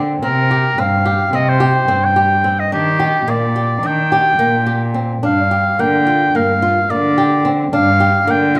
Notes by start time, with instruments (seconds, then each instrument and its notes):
Already playing: cello D3, nylon-string guitar C4
0.23 cello C3, nylon-string guitar C4, oboe A#4
0.51 nylon-string guitar G4
0.77 cello G2, nylon-string guitar C4, oboe F5
1.05 nylon-string guitar G4
1.33 cello C3, nylon-string guitar C4, oboe D#5
1.49 oboe C5
1.60 nylon-string guitar G4
1.88 cello G2, nylon-string guitar C4
2.05 oboe G5
2.16 nylon-string guitar G4
2.44 nylon-string guitar C4
2.60 oboe D#5
2.71 cello D#3, nylon-string guitar D4, oboe G4
3.00 nylon-string guitar G4
3.27 cello A#2, nylon-string guitar A#3, oboe D5
3.56 nylon-string guitar G4
3.83 cello D#3, nylon-string guitar D4, oboe G5
4.12 nylon-string guitar G4
4.39 cello A#2, nylon-string guitar A#3
4.66 nylon-string guitar G4
4.94 nylon-string guitar C4
5.23 cello G2, nylon-string guitar D4, oboe F5
5.51 nylon-string guitar G4
5.79 cello D3, nylon-string guitar A#3, oboe G5
6.07 nylon-string guitar F4
6.35 cello G2, nylon-string guitar A#3, oboe F5
6.62 nylon-string guitar F4
6.90 cello D3, nylon-string guitar A#3, oboe D5
7.18 nylon-string guitar G4
7.45 nylon-string guitar C4
7.73 cello G2, nylon-string guitar D4, oboe F5
8.00 nylon-string guitar G4
8.27 cello D3, nylon-string guitar A#3, oboe G5
8.55 nylon-string guitar F4